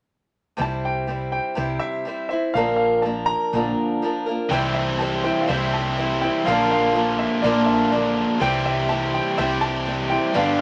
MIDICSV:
0, 0, Header, 1, 5, 480
1, 0, Start_track
1, 0, Tempo, 490597
1, 577, Time_signature, 4, 2, 24, 8
1, 4896, Tempo, 485044
1, 10445, End_track
2, 0, Start_track
2, 0, Title_t, "Grand piano"
2, 0, Program_c, 0, 0
2, 601, Note_on_c, 0, 81, 80
2, 832, Note_on_c, 0, 79, 80
2, 837, Note_off_c, 0, 81, 0
2, 1278, Note_off_c, 0, 79, 0
2, 1292, Note_on_c, 0, 79, 78
2, 1756, Note_on_c, 0, 76, 89
2, 1791, Note_off_c, 0, 79, 0
2, 2226, Note_off_c, 0, 76, 0
2, 2240, Note_on_c, 0, 76, 71
2, 2473, Note_off_c, 0, 76, 0
2, 2482, Note_on_c, 0, 77, 84
2, 2689, Note_off_c, 0, 77, 0
2, 2704, Note_on_c, 0, 77, 75
2, 2944, Note_off_c, 0, 77, 0
2, 2957, Note_on_c, 0, 81, 73
2, 3189, Note_on_c, 0, 82, 98
2, 3216, Note_off_c, 0, 81, 0
2, 4123, Note_off_c, 0, 82, 0
2, 4410, Note_on_c, 0, 79, 77
2, 4635, Note_off_c, 0, 79, 0
2, 4639, Note_on_c, 0, 76, 74
2, 4695, Note_off_c, 0, 76, 0
2, 4881, Note_on_c, 0, 81, 70
2, 5112, Note_off_c, 0, 81, 0
2, 5131, Note_on_c, 0, 79, 77
2, 5299, Note_on_c, 0, 77, 56
2, 5301, Note_off_c, 0, 79, 0
2, 5368, Note_off_c, 0, 77, 0
2, 5374, Note_on_c, 0, 76, 80
2, 5621, Note_on_c, 0, 81, 78
2, 5624, Note_off_c, 0, 76, 0
2, 6095, Note_on_c, 0, 79, 75
2, 6116, Note_off_c, 0, 81, 0
2, 6322, Note_off_c, 0, 79, 0
2, 6332, Note_on_c, 0, 77, 83
2, 6571, Note_off_c, 0, 77, 0
2, 6586, Note_on_c, 0, 77, 92
2, 7059, Note_on_c, 0, 76, 80
2, 7079, Note_off_c, 0, 77, 0
2, 7284, Note_off_c, 0, 76, 0
2, 7287, Note_on_c, 0, 74, 77
2, 7524, Note_on_c, 0, 76, 75
2, 7542, Note_off_c, 0, 74, 0
2, 7778, Note_on_c, 0, 74, 67
2, 7781, Note_off_c, 0, 76, 0
2, 8115, Note_off_c, 0, 74, 0
2, 8273, Note_on_c, 0, 79, 93
2, 8509, Note_on_c, 0, 76, 81
2, 8514, Note_off_c, 0, 79, 0
2, 8742, Note_on_c, 0, 81, 86
2, 8752, Note_off_c, 0, 76, 0
2, 8988, Note_off_c, 0, 81, 0
2, 8991, Note_on_c, 0, 79, 82
2, 9209, Note_off_c, 0, 79, 0
2, 9225, Note_on_c, 0, 76, 88
2, 9278, Note_off_c, 0, 76, 0
2, 9456, Note_on_c, 0, 81, 95
2, 9937, Note_on_c, 0, 79, 84
2, 9950, Note_off_c, 0, 81, 0
2, 10183, Note_off_c, 0, 79, 0
2, 10196, Note_on_c, 0, 77, 82
2, 10411, Note_off_c, 0, 77, 0
2, 10445, End_track
3, 0, Start_track
3, 0, Title_t, "Steel-string acoustic guitar"
3, 0, Program_c, 1, 25
3, 556, Note_on_c, 1, 48, 67
3, 565, Note_on_c, 1, 55, 71
3, 569, Note_on_c, 1, 60, 73
3, 574, Note_on_c, 1, 64, 66
3, 576, Note_on_c, 1, 72, 73
3, 1037, Note_off_c, 1, 55, 0
3, 1045, Note_off_c, 1, 60, 0
3, 1048, Note_off_c, 1, 48, 0
3, 1049, Note_on_c, 1, 55, 45
3, 1056, Note_on_c, 1, 60, 50
3, 1057, Note_off_c, 1, 64, 0
3, 1058, Note_off_c, 1, 72, 0
3, 1068, Note_on_c, 1, 64, 53
3, 1079, Note_on_c, 1, 72, 55
3, 1517, Note_off_c, 1, 55, 0
3, 1518, Note_on_c, 1, 48, 67
3, 1520, Note_off_c, 1, 60, 0
3, 1526, Note_off_c, 1, 64, 0
3, 1529, Note_on_c, 1, 55, 65
3, 1531, Note_off_c, 1, 72, 0
3, 1532, Note_on_c, 1, 60, 67
3, 1537, Note_on_c, 1, 64, 68
3, 1542, Note_on_c, 1, 72, 73
3, 1995, Note_off_c, 1, 55, 0
3, 2007, Note_on_c, 1, 55, 50
3, 2009, Note_off_c, 1, 48, 0
3, 2009, Note_off_c, 1, 60, 0
3, 2019, Note_off_c, 1, 64, 0
3, 2020, Note_on_c, 1, 60, 48
3, 2021, Note_off_c, 1, 72, 0
3, 2032, Note_on_c, 1, 64, 53
3, 2039, Note_on_c, 1, 72, 52
3, 2244, Note_off_c, 1, 72, 0
3, 2253, Note_off_c, 1, 55, 0
3, 2256, Note_on_c, 1, 72, 49
3, 2260, Note_off_c, 1, 60, 0
3, 2263, Note_off_c, 1, 64, 0
3, 2274, Note_on_c, 1, 64, 41
3, 2282, Note_on_c, 1, 60, 41
3, 2496, Note_on_c, 1, 46, 65
3, 2498, Note_off_c, 1, 72, 0
3, 2501, Note_on_c, 1, 50, 67
3, 2507, Note_off_c, 1, 60, 0
3, 2507, Note_off_c, 1, 64, 0
3, 2507, Note_on_c, 1, 53, 73
3, 2511, Note_on_c, 1, 58, 76
3, 2515, Note_on_c, 1, 62, 75
3, 2519, Note_on_c, 1, 70, 77
3, 2951, Note_off_c, 1, 53, 0
3, 2963, Note_on_c, 1, 53, 52
3, 2973, Note_off_c, 1, 58, 0
3, 2978, Note_off_c, 1, 46, 0
3, 2978, Note_off_c, 1, 62, 0
3, 2980, Note_off_c, 1, 50, 0
3, 2984, Note_off_c, 1, 70, 0
3, 2985, Note_on_c, 1, 58, 52
3, 2990, Note_on_c, 1, 62, 58
3, 2995, Note_on_c, 1, 70, 60
3, 3451, Note_off_c, 1, 53, 0
3, 3453, Note_on_c, 1, 46, 73
3, 3458, Note_off_c, 1, 58, 0
3, 3460, Note_on_c, 1, 50, 68
3, 3464, Note_off_c, 1, 62, 0
3, 3467, Note_off_c, 1, 70, 0
3, 3470, Note_on_c, 1, 53, 65
3, 3470, Note_on_c, 1, 58, 70
3, 3476, Note_on_c, 1, 62, 75
3, 3481, Note_on_c, 1, 70, 68
3, 3921, Note_off_c, 1, 53, 0
3, 3930, Note_off_c, 1, 58, 0
3, 3933, Note_on_c, 1, 53, 57
3, 3935, Note_off_c, 1, 46, 0
3, 3939, Note_off_c, 1, 50, 0
3, 3942, Note_on_c, 1, 58, 57
3, 3944, Note_off_c, 1, 62, 0
3, 3949, Note_off_c, 1, 70, 0
3, 3955, Note_on_c, 1, 62, 60
3, 3967, Note_on_c, 1, 70, 59
3, 4157, Note_off_c, 1, 70, 0
3, 4169, Note_on_c, 1, 70, 55
3, 4173, Note_off_c, 1, 62, 0
3, 4175, Note_off_c, 1, 53, 0
3, 4179, Note_off_c, 1, 58, 0
3, 4185, Note_on_c, 1, 62, 49
3, 4199, Note_on_c, 1, 58, 44
3, 4204, Note_on_c, 1, 53, 40
3, 4412, Note_off_c, 1, 70, 0
3, 4414, Note_on_c, 1, 48, 72
3, 4415, Note_off_c, 1, 53, 0
3, 4419, Note_on_c, 1, 55, 73
3, 4420, Note_off_c, 1, 62, 0
3, 4423, Note_off_c, 1, 58, 0
3, 4425, Note_on_c, 1, 64, 76
3, 4427, Note_on_c, 1, 60, 75
3, 4431, Note_on_c, 1, 72, 84
3, 4872, Note_off_c, 1, 55, 0
3, 4883, Note_on_c, 1, 55, 56
3, 4885, Note_off_c, 1, 60, 0
3, 4893, Note_off_c, 1, 48, 0
3, 4895, Note_off_c, 1, 64, 0
3, 4897, Note_on_c, 1, 60, 60
3, 4902, Note_off_c, 1, 72, 0
3, 4907, Note_on_c, 1, 64, 55
3, 4912, Note_on_c, 1, 72, 59
3, 5116, Note_off_c, 1, 72, 0
3, 5128, Note_on_c, 1, 72, 51
3, 5130, Note_off_c, 1, 55, 0
3, 5135, Note_off_c, 1, 64, 0
3, 5137, Note_off_c, 1, 60, 0
3, 5147, Note_on_c, 1, 64, 45
3, 5167, Note_on_c, 1, 60, 36
3, 5356, Note_on_c, 1, 48, 65
3, 5365, Note_off_c, 1, 60, 0
3, 5373, Note_off_c, 1, 72, 0
3, 5373, Note_on_c, 1, 55, 72
3, 5374, Note_off_c, 1, 64, 0
3, 5377, Note_on_c, 1, 60, 77
3, 5383, Note_on_c, 1, 72, 82
3, 5386, Note_on_c, 1, 64, 73
3, 5842, Note_off_c, 1, 55, 0
3, 5849, Note_off_c, 1, 48, 0
3, 5854, Note_on_c, 1, 55, 55
3, 5857, Note_off_c, 1, 60, 0
3, 5861, Note_off_c, 1, 64, 0
3, 5862, Note_off_c, 1, 72, 0
3, 5868, Note_on_c, 1, 60, 54
3, 5872, Note_on_c, 1, 64, 61
3, 5884, Note_on_c, 1, 72, 55
3, 6084, Note_off_c, 1, 72, 0
3, 6096, Note_on_c, 1, 72, 43
3, 6097, Note_off_c, 1, 55, 0
3, 6102, Note_off_c, 1, 64, 0
3, 6105, Note_off_c, 1, 60, 0
3, 6114, Note_on_c, 1, 64, 40
3, 6124, Note_on_c, 1, 60, 40
3, 6338, Note_on_c, 1, 46, 67
3, 6339, Note_off_c, 1, 72, 0
3, 6343, Note_on_c, 1, 50, 74
3, 6348, Note_off_c, 1, 64, 0
3, 6350, Note_off_c, 1, 60, 0
3, 6350, Note_on_c, 1, 53, 80
3, 6354, Note_on_c, 1, 58, 76
3, 6358, Note_on_c, 1, 62, 76
3, 6369, Note_on_c, 1, 70, 81
3, 6798, Note_off_c, 1, 53, 0
3, 6810, Note_on_c, 1, 53, 56
3, 6813, Note_off_c, 1, 58, 0
3, 6818, Note_off_c, 1, 62, 0
3, 6821, Note_off_c, 1, 46, 0
3, 6823, Note_off_c, 1, 50, 0
3, 6825, Note_on_c, 1, 58, 55
3, 6830, Note_off_c, 1, 70, 0
3, 6830, Note_on_c, 1, 62, 58
3, 6841, Note_on_c, 1, 70, 55
3, 7296, Note_off_c, 1, 53, 0
3, 7302, Note_on_c, 1, 46, 70
3, 7304, Note_off_c, 1, 58, 0
3, 7307, Note_off_c, 1, 62, 0
3, 7307, Note_on_c, 1, 50, 77
3, 7312, Note_off_c, 1, 70, 0
3, 7312, Note_on_c, 1, 53, 72
3, 7319, Note_on_c, 1, 58, 78
3, 7321, Note_on_c, 1, 62, 73
3, 7326, Note_on_c, 1, 70, 74
3, 7770, Note_off_c, 1, 53, 0
3, 7777, Note_off_c, 1, 58, 0
3, 7781, Note_on_c, 1, 53, 58
3, 7783, Note_off_c, 1, 46, 0
3, 7785, Note_off_c, 1, 50, 0
3, 7789, Note_on_c, 1, 58, 58
3, 7792, Note_off_c, 1, 62, 0
3, 7794, Note_off_c, 1, 70, 0
3, 7803, Note_on_c, 1, 62, 60
3, 7815, Note_on_c, 1, 70, 62
3, 8259, Note_on_c, 1, 48, 73
3, 8262, Note_off_c, 1, 53, 0
3, 8265, Note_off_c, 1, 58, 0
3, 8270, Note_on_c, 1, 55, 78
3, 8270, Note_on_c, 1, 60, 86
3, 8273, Note_off_c, 1, 62, 0
3, 8278, Note_on_c, 1, 64, 77
3, 8279, Note_off_c, 1, 70, 0
3, 8285, Note_on_c, 1, 67, 80
3, 8738, Note_off_c, 1, 55, 0
3, 8740, Note_off_c, 1, 48, 0
3, 8742, Note_on_c, 1, 55, 53
3, 8745, Note_off_c, 1, 60, 0
3, 8750, Note_off_c, 1, 64, 0
3, 8759, Note_on_c, 1, 60, 57
3, 8763, Note_off_c, 1, 67, 0
3, 8763, Note_on_c, 1, 64, 53
3, 8767, Note_on_c, 1, 67, 61
3, 9220, Note_off_c, 1, 60, 0
3, 9223, Note_on_c, 1, 48, 71
3, 9224, Note_off_c, 1, 55, 0
3, 9227, Note_on_c, 1, 55, 73
3, 9231, Note_off_c, 1, 64, 0
3, 9232, Note_on_c, 1, 60, 71
3, 9239, Note_off_c, 1, 67, 0
3, 9241, Note_on_c, 1, 64, 82
3, 9243, Note_on_c, 1, 67, 79
3, 9695, Note_off_c, 1, 55, 0
3, 9699, Note_off_c, 1, 60, 0
3, 9699, Note_on_c, 1, 55, 53
3, 9700, Note_off_c, 1, 48, 0
3, 9709, Note_off_c, 1, 64, 0
3, 9711, Note_on_c, 1, 60, 55
3, 9725, Note_on_c, 1, 64, 50
3, 9729, Note_off_c, 1, 67, 0
3, 9733, Note_on_c, 1, 67, 55
3, 9924, Note_off_c, 1, 67, 0
3, 9936, Note_on_c, 1, 67, 42
3, 9938, Note_off_c, 1, 55, 0
3, 9941, Note_off_c, 1, 64, 0
3, 9944, Note_off_c, 1, 60, 0
3, 9952, Note_on_c, 1, 64, 40
3, 9963, Note_on_c, 1, 60, 36
3, 10176, Note_off_c, 1, 67, 0
3, 10176, Note_on_c, 1, 43, 78
3, 10180, Note_on_c, 1, 50, 74
3, 10181, Note_on_c, 1, 55, 76
3, 10182, Note_off_c, 1, 60, 0
3, 10183, Note_off_c, 1, 64, 0
3, 10186, Note_on_c, 1, 59, 81
3, 10187, Note_on_c, 1, 62, 80
3, 10190, Note_on_c, 1, 67, 78
3, 10445, Note_off_c, 1, 43, 0
3, 10445, Note_off_c, 1, 50, 0
3, 10445, Note_off_c, 1, 55, 0
3, 10445, Note_off_c, 1, 59, 0
3, 10445, Note_off_c, 1, 62, 0
3, 10445, Note_off_c, 1, 67, 0
3, 10445, End_track
4, 0, Start_track
4, 0, Title_t, "Overdriven electric guitar"
4, 0, Program_c, 2, 29
4, 4403, Note_on_c, 2, 52, 77
4, 5356, Note_off_c, 2, 52, 0
4, 5375, Note_on_c, 2, 52, 68
4, 6325, Note_off_c, 2, 52, 0
4, 6360, Note_on_c, 2, 65, 91
4, 7298, Note_off_c, 2, 65, 0
4, 7320, Note_on_c, 2, 65, 84
4, 8256, Note_off_c, 2, 65, 0
4, 8266, Note_on_c, 2, 52, 82
4, 9208, Note_off_c, 2, 52, 0
4, 9228, Note_on_c, 2, 52, 74
4, 10166, Note_off_c, 2, 52, 0
4, 10445, End_track
5, 0, Start_track
5, 0, Title_t, "Fingered electric bass"
5, 0, Program_c, 3, 33
5, 582, Note_on_c, 3, 36, 82
5, 1353, Note_off_c, 3, 36, 0
5, 1544, Note_on_c, 3, 36, 78
5, 1735, Note_off_c, 3, 36, 0
5, 2495, Note_on_c, 3, 34, 97
5, 3268, Note_off_c, 3, 34, 0
5, 3457, Note_on_c, 3, 34, 86
5, 3651, Note_off_c, 3, 34, 0
5, 4413, Note_on_c, 3, 36, 86
5, 5186, Note_off_c, 3, 36, 0
5, 5380, Note_on_c, 3, 36, 93
5, 6153, Note_off_c, 3, 36, 0
5, 6356, Note_on_c, 3, 34, 95
5, 7123, Note_off_c, 3, 34, 0
5, 7313, Note_on_c, 3, 34, 90
5, 8080, Note_off_c, 3, 34, 0
5, 8268, Note_on_c, 3, 36, 89
5, 9035, Note_off_c, 3, 36, 0
5, 9234, Note_on_c, 3, 36, 94
5, 9997, Note_off_c, 3, 36, 0
5, 10197, Note_on_c, 3, 31, 88
5, 10445, Note_off_c, 3, 31, 0
5, 10445, End_track
0, 0, End_of_file